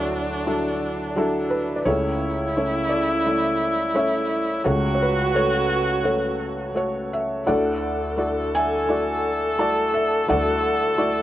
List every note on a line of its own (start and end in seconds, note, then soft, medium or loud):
0.00 1.82 D2 medium
0.00 1.82 D3 medium
0.00 0.47 F#3 medium
0.00 0.47 D4 medium
0.00 1.82 D4 medium
0.00 0.47 E4 medium
0.00 1.88 F#4 medium
0.00 0.48 A4 medium
0.00 1.85 C#5 medium
0.00 1.76 D5 medium
0.00 1.88 F#5 medium
0.47 1.10 F#3 medium
0.47 1.10 D4 medium
0.47 1.10 E4 medium
0.47 1.10 A4 medium
1.16 1.79 F#3 medium
1.16 1.80 D4 medium
1.16 1.80 E4 medium
1.16 1.80 A4 medium
1.50 1.80 B4 medium
1.76 1.85 D5 medium
1.84 4.61 C#2 medium
1.84 4.62 C#2 medium
1.84 4.62 C#3 medium
1.84 2.49 A3 medium
1.84 2.49 C#4 medium
1.84 4.66 E4 medium
1.84 2.55 E4 medium
1.84 2.57 C#5 medium
2.56 3.19 A3 medium
2.56 3.20 C#4 medium
2.56 3.19 E4 medium
2.56 3.20 C#5 medium
2.89 4.26 A4 medium
2.89 3.91 D5 medium
3.25 3.88 A3 medium
3.25 3.89 E4 medium
3.25 3.89 E5 medium
3.94 4.58 A3 medium
3.94 4.58 C#4 medium
3.94 4.58 E4 medium
3.94 4.59 C#5 medium
3.94 4.68 E5 medium
4.64 7.43 C#2 medium
4.64 7.43 C#3 medium
4.64 5.28 A3 medium
4.64 7.11 F#4 loud
4.64 5.28 F#4 medium
4.64 5.29 A4 medium
4.64 4.93 C#5 medium
4.95 5.01 C#5 medium
5.02 5.38 B4 medium
5.34 5.98 A3 medium
5.34 5.99 F#4 medium
5.34 5.99 A4 medium
5.34 6.04 C#5 medium
6.04 6.68 A3 medium
6.04 6.69 F#4 medium
6.04 6.69 A4 medium
6.04 6.69 C#5 medium
6.75 7.39 A3 medium
6.75 7.40 F#4 medium
6.75 7.40 A4 medium
6.75 7.40 C#5 medium
7.13 7.49 E5 medium
7.45 10.25 D2 medium
7.45 10.26 D2 medium
7.45 10.25 D3 medium
7.45 8.11 A3 medium
7.45 8.11 E4 medium
7.45 8.11 F#4 medium
7.45 11.22 A4 loud
7.45 8.86 A4 medium
7.45 8.11 D5 medium
7.45 8.57 F#5 medium
8.17 8.81 A3 medium
8.17 8.82 E4 medium
8.17 8.82 F#4 medium
8.17 8.82 D5 medium
8.55 9.92 E5 medium
8.55 9.63 G#5 loud
8.89 9.52 A3 medium
8.89 9.52 E4 medium
8.89 9.53 F#4 medium
8.89 9.53 D5 medium
9.58 10.22 A3 medium
9.58 10.22 E4 medium
9.58 10.23 F#4 soft
9.58 10.23 D5 medium
9.58 9.96 A5 medium
9.94 10.27 E5 medium
10.28 11.22 D2 medium
10.28 11.22 D3 medium
10.28 10.92 A3 medium
10.28 10.92 E4 medium
10.28 10.92 F#4 medium
10.28 11.22 A4 medium
10.28 10.92 D5 medium
10.28 11.22 F#5 medium
10.98 11.22 A3 medium
10.98 11.22 E4 medium
10.98 11.22 F#4 medium
10.98 11.22 D5 medium